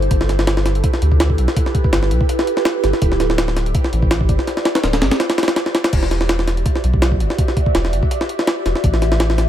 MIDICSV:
0, 0, Header, 1, 4, 480
1, 0, Start_track
1, 0, Key_signature, 1, "minor"
1, 0, Tempo, 363636
1, 145, Time_signature, 4, 2, 24, 8
1, 12524, End_track
2, 0, Start_track
2, 0, Title_t, "Ambient pad"
2, 0, Program_c, 0, 92
2, 0, Note_on_c, 0, 64, 82
2, 0, Note_on_c, 0, 69, 77
2, 145, Note_on_c, 0, 67, 70
2, 145, Note_on_c, 0, 71, 88
2, 3933, Note_off_c, 0, 69, 0
2, 3946, Note_off_c, 0, 71, 0
2, 3985, Note_on_c, 0, 74, 91
2, 3986, Note_on_c, 0, 72, 74
2, 7772, Note_off_c, 0, 64, 0
2, 7772, Note_off_c, 0, 67, 0
2, 7786, Note_off_c, 0, 74, 0
2, 7787, Note_off_c, 0, 72, 0
2, 7826, Note_on_c, 0, 76, 89
2, 7828, Note_on_c, 0, 74, 73
2, 7829, Note_on_c, 0, 66, 79
2, 7829, Note_on_c, 0, 67, 75
2, 11628, Note_off_c, 0, 66, 0
2, 11628, Note_off_c, 0, 67, 0
2, 11628, Note_off_c, 0, 74, 0
2, 11664, Note_on_c, 0, 72, 72
2, 11665, Note_on_c, 0, 69, 73
2, 11666, Note_on_c, 0, 67, 77
2, 12524, Note_off_c, 0, 67, 0
2, 12524, Note_off_c, 0, 69, 0
2, 12524, Note_off_c, 0, 72, 0
2, 12524, Note_off_c, 0, 76, 0
2, 12524, End_track
3, 0, Start_track
3, 0, Title_t, "Sub bass"
3, 0, Program_c, 1, 38
3, 144, Note_on_c, 1, 31, 96
3, 1087, Note_off_c, 1, 31, 0
3, 1342, Note_on_c, 1, 38, 85
3, 1825, Note_on_c, 1, 35, 102
3, 1845, Note_off_c, 1, 38, 0
3, 1940, Note_off_c, 1, 35, 0
3, 2543, Note_on_c, 1, 31, 99
3, 2785, Note_on_c, 1, 35, 101
3, 2805, Note_off_c, 1, 31, 0
3, 2900, Note_off_c, 1, 35, 0
3, 3746, Note_on_c, 1, 31, 94
3, 3861, Note_off_c, 1, 31, 0
3, 3984, Note_on_c, 1, 26, 98
3, 4926, Note_off_c, 1, 26, 0
3, 5184, Note_on_c, 1, 33, 84
3, 5665, Note_on_c, 1, 31, 100
3, 5685, Note_off_c, 1, 33, 0
3, 5780, Note_off_c, 1, 31, 0
3, 6383, Note_on_c, 1, 26, 99
3, 6622, Note_on_c, 1, 31, 103
3, 6642, Note_off_c, 1, 26, 0
3, 6739, Note_off_c, 1, 31, 0
3, 7825, Note_on_c, 1, 28, 99
3, 8767, Note_off_c, 1, 28, 0
3, 9024, Note_on_c, 1, 35, 87
3, 9506, Note_on_c, 1, 31, 99
3, 9526, Note_off_c, 1, 35, 0
3, 9621, Note_off_c, 1, 31, 0
3, 10225, Note_on_c, 1, 28, 100
3, 10465, Note_on_c, 1, 31, 108
3, 10485, Note_off_c, 1, 28, 0
3, 10581, Note_off_c, 1, 31, 0
3, 11424, Note_on_c, 1, 28, 91
3, 11540, Note_off_c, 1, 28, 0
3, 11666, Note_on_c, 1, 33, 102
3, 12524, Note_off_c, 1, 33, 0
3, 12524, End_track
4, 0, Start_track
4, 0, Title_t, "Drums"
4, 32, Note_on_c, 9, 42, 39
4, 143, Note_off_c, 9, 42, 0
4, 143, Note_on_c, 9, 42, 91
4, 144, Note_on_c, 9, 36, 110
4, 274, Note_on_c, 9, 38, 49
4, 275, Note_off_c, 9, 42, 0
4, 276, Note_off_c, 9, 36, 0
4, 386, Note_off_c, 9, 38, 0
4, 386, Note_on_c, 9, 38, 45
4, 386, Note_on_c, 9, 42, 63
4, 514, Note_off_c, 9, 38, 0
4, 514, Note_on_c, 9, 38, 60
4, 518, Note_off_c, 9, 42, 0
4, 625, Note_off_c, 9, 38, 0
4, 625, Note_on_c, 9, 38, 111
4, 625, Note_on_c, 9, 42, 88
4, 754, Note_off_c, 9, 38, 0
4, 754, Note_on_c, 9, 38, 54
4, 757, Note_off_c, 9, 42, 0
4, 866, Note_off_c, 9, 38, 0
4, 866, Note_on_c, 9, 38, 50
4, 866, Note_on_c, 9, 42, 71
4, 993, Note_off_c, 9, 42, 0
4, 993, Note_on_c, 9, 42, 44
4, 998, Note_off_c, 9, 38, 0
4, 1105, Note_off_c, 9, 42, 0
4, 1105, Note_on_c, 9, 36, 106
4, 1105, Note_on_c, 9, 42, 84
4, 1234, Note_on_c, 9, 38, 44
4, 1237, Note_off_c, 9, 36, 0
4, 1237, Note_off_c, 9, 42, 0
4, 1345, Note_on_c, 9, 42, 70
4, 1366, Note_off_c, 9, 38, 0
4, 1473, Note_on_c, 9, 36, 92
4, 1477, Note_off_c, 9, 42, 0
4, 1585, Note_on_c, 9, 38, 116
4, 1585, Note_on_c, 9, 42, 87
4, 1605, Note_off_c, 9, 36, 0
4, 1713, Note_on_c, 9, 36, 96
4, 1717, Note_off_c, 9, 38, 0
4, 1717, Note_off_c, 9, 42, 0
4, 1824, Note_on_c, 9, 42, 67
4, 1845, Note_off_c, 9, 36, 0
4, 1954, Note_on_c, 9, 38, 54
4, 1956, Note_off_c, 9, 42, 0
4, 2065, Note_on_c, 9, 36, 110
4, 2066, Note_on_c, 9, 42, 92
4, 2086, Note_off_c, 9, 38, 0
4, 2195, Note_on_c, 9, 38, 43
4, 2197, Note_off_c, 9, 36, 0
4, 2198, Note_off_c, 9, 42, 0
4, 2305, Note_on_c, 9, 36, 90
4, 2306, Note_on_c, 9, 42, 66
4, 2327, Note_off_c, 9, 38, 0
4, 2434, Note_off_c, 9, 36, 0
4, 2434, Note_on_c, 9, 36, 103
4, 2438, Note_off_c, 9, 42, 0
4, 2545, Note_on_c, 9, 38, 114
4, 2545, Note_on_c, 9, 42, 85
4, 2566, Note_off_c, 9, 36, 0
4, 2674, Note_off_c, 9, 38, 0
4, 2674, Note_on_c, 9, 38, 47
4, 2677, Note_off_c, 9, 42, 0
4, 2786, Note_on_c, 9, 42, 68
4, 2806, Note_off_c, 9, 38, 0
4, 2913, Note_on_c, 9, 36, 103
4, 2918, Note_off_c, 9, 42, 0
4, 3025, Note_on_c, 9, 42, 90
4, 3045, Note_off_c, 9, 36, 0
4, 3154, Note_on_c, 9, 38, 58
4, 3157, Note_off_c, 9, 42, 0
4, 3264, Note_on_c, 9, 42, 69
4, 3286, Note_off_c, 9, 38, 0
4, 3391, Note_on_c, 9, 38, 59
4, 3396, Note_off_c, 9, 42, 0
4, 3502, Note_off_c, 9, 38, 0
4, 3502, Note_on_c, 9, 38, 124
4, 3502, Note_on_c, 9, 42, 85
4, 3634, Note_off_c, 9, 38, 0
4, 3634, Note_off_c, 9, 42, 0
4, 3743, Note_on_c, 9, 38, 46
4, 3743, Note_on_c, 9, 42, 69
4, 3872, Note_off_c, 9, 38, 0
4, 3872, Note_on_c, 9, 38, 44
4, 3875, Note_off_c, 9, 42, 0
4, 3982, Note_on_c, 9, 42, 94
4, 3984, Note_on_c, 9, 36, 113
4, 4004, Note_off_c, 9, 38, 0
4, 4114, Note_off_c, 9, 42, 0
4, 4114, Note_on_c, 9, 38, 46
4, 4116, Note_off_c, 9, 36, 0
4, 4224, Note_off_c, 9, 38, 0
4, 4224, Note_on_c, 9, 38, 46
4, 4224, Note_on_c, 9, 42, 67
4, 4354, Note_off_c, 9, 38, 0
4, 4354, Note_on_c, 9, 38, 56
4, 4356, Note_off_c, 9, 42, 0
4, 4465, Note_off_c, 9, 38, 0
4, 4465, Note_on_c, 9, 38, 114
4, 4465, Note_on_c, 9, 42, 90
4, 4595, Note_off_c, 9, 38, 0
4, 4595, Note_on_c, 9, 38, 54
4, 4597, Note_off_c, 9, 42, 0
4, 4706, Note_off_c, 9, 38, 0
4, 4706, Note_on_c, 9, 38, 50
4, 4706, Note_on_c, 9, 42, 69
4, 4834, Note_off_c, 9, 42, 0
4, 4834, Note_on_c, 9, 42, 45
4, 4838, Note_off_c, 9, 38, 0
4, 4945, Note_off_c, 9, 42, 0
4, 4945, Note_on_c, 9, 36, 107
4, 4945, Note_on_c, 9, 42, 88
4, 5074, Note_on_c, 9, 38, 47
4, 5077, Note_off_c, 9, 36, 0
4, 5077, Note_off_c, 9, 42, 0
4, 5185, Note_on_c, 9, 42, 66
4, 5206, Note_off_c, 9, 38, 0
4, 5313, Note_on_c, 9, 36, 94
4, 5317, Note_off_c, 9, 42, 0
4, 5424, Note_on_c, 9, 38, 117
4, 5424, Note_on_c, 9, 42, 89
4, 5445, Note_off_c, 9, 36, 0
4, 5553, Note_on_c, 9, 36, 93
4, 5556, Note_off_c, 9, 38, 0
4, 5556, Note_off_c, 9, 42, 0
4, 5662, Note_on_c, 9, 42, 76
4, 5664, Note_off_c, 9, 36, 0
4, 5664, Note_on_c, 9, 36, 98
4, 5793, Note_on_c, 9, 38, 44
4, 5794, Note_off_c, 9, 42, 0
4, 5796, Note_off_c, 9, 36, 0
4, 5906, Note_off_c, 9, 38, 0
4, 5906, Note_on_c, 9, 38, 41
4, 5906, Note_on_c, 9, 42, 66
4, 6032, Note_off_c, 9, 38, 0
4, 6032, Note_on_c, 9, 38, 53
4, 6038, Note_off_c, 9, 42, 0
4, 6143, Note_off_c, 9, 38, 0
4, 6143, Note_on_c, 9, 38, 102
4, 6143, Note_on_c, 9, 42, 77
4, 6273, Note_off_c, 9, 38, 0
4, 6273, Note_off_c, 9, 42, 0
4, 6273, Note_on_c, 9, 38, 110
4, 6273, Note_on_c, 9, 42, 85
4, 6383, Note_off_c, 9, 38, 0
4, 6383, Note_off_c, 9, 42, 0
4, 6383, Note_on_c, 9, 38, 101
4, 6383, Note_on_c, 9, 42, 80
4, 6512, Note_off_c, 9, 38, 0
4, 6512, Note_off_c, 9, 42, 0
4, 6512, Note_on_c, 9, 38, 106
4, 6512, Note_on_c, 9, 42, 84
4, 6623, Note_off_c, 9, 38, 0
4, 6623, Note_off_c, 9, 42, 0
4, 6623, Note_on_c, 9, 38, 107
4, 6623, Note_on_c, 9, 42, 81
4, 6751, Note_off_c, 9, 38, 0
4, 6751, Note_off_c, 9, 42, 0
4, 6751, Note_on_c, 9, 38, 107
4, 6751, Note_on_c, 9, 42, 82
4, 6863, Note_off_c, 9, 38, 0
4, 6863, Note_off_c, 9, 42, 0
4, 6863, Note_on_c, 9, 38, 101
4, 6863, Note_on_c, 9, 42, 81
4, 6990, Note_off_c, 9, 38, 0
4, 6990, Note_off_c, 9, 42, 0
4, 6990, Note_on_c, 9, 38, 101
4, 6990, Note_on_c, 9, 42, 80
4, 7103, Note_off_c, 9, 38, 0
4, 7103, Note_off_c, 9, 42, 0
4, 7103, Note_on_c, 9, 38, 89
4, 7103, Note_on_c, 9, 42, 71
4, 7167, Note_off_c, 9, 38, 0
4, 7167, Note_off_c, 9, 42, 0
4, 7167, Note_on_c, 9, 38, 90
4, 7167, Note_on_c, 9, 42, 69
4, 7232, Note_off_c, 9, 38, 0
4, 7232, Note_off_c, 9, 42, 0
4, 7232, Note_on_c, 9, 38, 99
4, 7232, Note_on_c, 9, 42, 78
4, 7343, Note_off_c, 9, 38, 0
4, 7343, Note_off_c, 9, 42, 0
4, 7343, Note_on_c, 9, 38, 108
4, 7343, Note_on_c, 9, 42, 83
4, 7473, Note_off_c, 9, 38, 0
4, 7473, Note_on_c, 9, 38, 51
4, 7475, Note_off_c, 9, 42, 0
4, 7585, Note_off_c, 9, 38, 0
4, 7585, Note_on_c, 9, 38, 101
4, 7585, Note_on_c, 9, 42, 80
4, 7713, Note_off_c, 9, 38, 0
4, 7713, Note_off_c, 9, 42, 0
4, 7713, Note_on_c, 9, 38, 106
4, 7713, Note_on_c, 9, 42, 80
4, 7826, Note_off_c, 9, 42, 0
4, 7826, Note_on_c, 9, 36, 118
4, 7826, Note_on_c, 9, 42, 92
4, 7826, Note_on_c, 9, 49, 97
4, 7845, Note_off_c, 9, 38, 0
4, 7955, Note_on_c, 9, 38, 47
4, 7958, Note_off_c, 9, 36, 0
4, 7958, Note_off_c, 9, 42, 0
4, 7958, Note_off_c, 9, 49, 0
4, 8067, Note_off_c, 9, 38, 0
4, 8067, Note_on_c, 9, 38, 46
4, 8067, Note_on_c, 9, 42, 67
4, 8193, Note_off_c, 9, 38, 0
4, 8193, Note_on_c, 9, 38, 58
4, 8199, Note_off_c, 9, 42, 0
4, 8306, Note_off_c, 9, 38, 0
4, 8306, Note_on_c, 9, 38, 116
4, 8306, Note_on_c, 9, 42, 87
4, 8435, Note_off_c, 9, 38, 0
4, 8435, Note_on_c, 9, 38, 57
4, 8438, Note_off_c, 9, 42, 0
4, 8547, Note_off_c, 9, 38, 0
4, 8547, Note_on_c, 9, 38, 51
4, 8547, Note_on_c, 9, 42, 71
4, 8676, Note_off_c, 9, 42, 0
4, 8676, Note_on_c, 9, 42, 45
4, 8679, Note_off_c, 9, 38, 0
4, 8786, Note_on_c, 9, 36, 104
4, 8787, Note_off_c, 9, 42, 0
4, 8787, Note_on_c, 9, 42, 87
4, 8916, Note_on_c, 9, 38, 44
4, 8918, Note_off_c, 9, 36, 0
4, 8919, Note_off_c, 9, 42, 0
4, 9027, Note_on_c, 9, 42, 68
4, 9048, Note_off_c, 9, 38, 0
4, 9155, Note_on_c, 9, 36, 94
4, 9159, Note_off_c, 9, 42, 0
4, 9267, Note_on_c, 9, 38, 121
4, 9267, Note_on_c, 9, 42, 93
4, 9287, Note_off_c, 9, 36, 0
4, 9395, Note_on_c, 9, 36, 98
4, 9399, Note_off_c, 9, 38, 0
4, 9399, Note_off_c, 9, 42, 0
4, 9509, Note_on_c, 9, 42, 66
4, 9527, Note_off_c, 9, 36, 0
4, 9639, Note_on_c, 9, 38, 51
4, 9641, Note_off_c, 9, 42, 0
4, 9747, Note_on_c, 9, 36, 113
4, 9748, Note_on_c, 9, 42, 92
4, 9771, Note_off_c, 9, 38, 0
4, 9877, Note_on_c, 9, 38, 44
4, 9879, Note_off_c, 9, 36, 0
4, 9880, Note_off_c, 9, 42, 0
4, 9987, Note_on_c, 9, 36, 93
4, 9989, Note_on_c, 9, 42, 66
4, 10009, Note_off_c, 9, 38, 0
4, 10116, Note_off_c, 9, 36, 0
4, 10116, Note_on_c, 9, 36, 97
4, 10121, Note_off_c, 9, 42, 0
4, 10228, Note_on_c, 9, 38, 121
4, 10228, Note_on_c, 9, 42, 92
4, 10248, Note_off_c, 9, 36, 0
4, 10357, Note_off_c, 9, 38, 0
4, 10357, Note_on_c, 9, 38, 49
4, 10360, Note_off_c, 9, 42, 0
4, 10468, Note_on_c, 9, 42, 68
4, 10489, Note_off_c, 9, 38, 0
4, 10596, Note_on_c, 9, 36, 98
4, 10600, Note_off_c, 9, 42, 0
4, 10707, Note_on_c, 9, 42, 88
4, 10728, Note_off_c, 9, 36, 0
4, 10836, Note_on_c, 9, 38, 58
4, 10839, Note_off_c, 9, 42, 0
4, 10946, Note_on_c, 9, 42, 67
4, 10968, Note_off_c, 9, 38, 0
4, 11075, Note_on_c, 9, 38, 57
4, 11078, Note_off_c, 9, 42, 0
4, 11186, Note_off_c, 9, 38, 0
4, 11186, Note_on_c, 9, 38, 123
4, 11186, Note_on_c, 9, 42, 87
4, 11318, Note_off_c, 9, 38, 0
4, 11318, Note_off_c, 9, 42, 0
4, 11427, Note_on_c, 9, 38, 44
4, 11427, Note_on_c, 9, 42, 66
4, 11556, Note_off_c, 9, 38, 0
4, 11556, Note_on_c, 9, 38, 45
4, 11559, Note_off_c, 9, 42, 0
4, 11666, Note_on_c, 9, 36, 117
4, 11666, Note_on_c, 9, 42, 89
4, 11688, Note_off_c, 9, 38, 0
4, 11795, Note_on_c, 9, 38, 46
4, 11798, Note_off_c, 9, 36, 0
4, 11798, Note_off_c, 9, 42, 0
4, 11905, Note_off_c, 9, 38, 0
4, 11905, Note_on_c, 9, 38, 45
4, 11905, Note_on_c, 9, 42, 65
4, 12034, Note_off_c, 9, 38, 0
4, 12034, Note_on_c, 9, 38, 58
4, 12037, Note_off_c, 9, 42, 0
4, 12144, Note_off_c, 9, 38, 0
4, 12144, Note_on_c, 9, 38, 114
4, 12144, Note_on_c, 9, 42, 87
4, 12273, Note_off_c, 9, 38, 0
4, 12273, Note_on_c, 9, 38, 53
4, 12276, Note_off_c, 9, 42, 0
4, 12383, Note_off_c, 9, 38, 0
4, 12383, Note_on_c, 9, 38, 51
4, 12383, Note_on_c, 9, 42, 72
4, 12515, Note_off_c, 9, 38, 0
4, 12515, Note_off_c, 9, 42, 0
4, 12524, End_track
0, 0, End_of_file